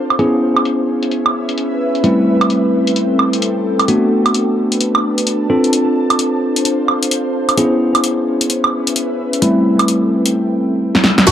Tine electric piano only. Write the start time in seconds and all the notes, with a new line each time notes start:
Already playing: C4 D4 F4 A4
0.19 B3 C#4 E4 G#4
2.04 G3 A3 C4 E4
3.88 A3 B3 D4 F#4
5.50 C4 D4 F4 A4
7.57 B3 C#4 E4 G#4
9.42 G3 A3 C4 E4
11.27 A3 B3 D4 F#4